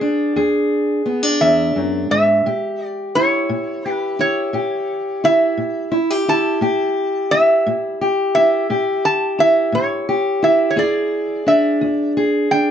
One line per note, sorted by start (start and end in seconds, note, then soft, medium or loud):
0.00 1.05 D4 medium
0.00 0.35 G#4 medium
0.36 0.99 E2 medium
0.36 2.41 G#4 medium
1.06 1.23 B3 soft
1.23 2.45 D4 soft
1.41 1.75 E2 medium
1.41 2.07 E5 medium
1.76 2.10 F#2 medium
2.11 2.45 G#2 medium
2.11 2.86 E5 medium
2.46 3.08 A2 medium
2.46 3.85 G4 medium
2.86 3.18 D5 medium
3.15 4.19 E4 soft
3.15 3.90 C#5 medium
3.49 4.12 A2 medium
3.86 4.54 G4 medium
3.90 4.19 B4 medium
4.19 5.23 E4 medium
4.19 5.27 C#5 medium
4.53 5.16 A2 medium
4.53 5.91 G4 medium
5.24 5.92 E4 medium
5.24 6.24 E5 medium
5.57 6.20 A2 medium
5.92 6.10 E4 medium
6.10 6.61 G4 soft
6.28 7.33 E4 medium
6.28 7.35 A5 medium
6.61 7.24 A2 medium
6.61 8.00 G4 medium
7.31 8.36 E4 medium
7.31 8.31 E5 loud
7.66 8.28 A2 medium
8.01 8.69 G4 medium
8.35 9.38 E4 medium
8.35 9.06 E5 medium
8.70 9.32 A2 medium
8.70 10.08 G4 medium
9.05 9.37 A5 medium
9.39 10.42 E4 medium
9.39 9.75 E5 medium
9.72 10.35 A2 medium
9.72 10.45 C#5 medium
10.09 10.73 G4 medium
10.43 11.46 E4 medium
10.43 10.72 E5 medium
10.70 10.77 C#5 medium
10.76 11.39 E2 medium
10.76 12.16 G#4 medium
10.76 11.49 D5 medium
11.46 12.52 D4 medium
11.46 12.12 E5 medium
11.81 12.44 E2 medium
12.17 12.71 G#4 medium
12.51 12.71 D4 medium
12.51 12.71 G5 medium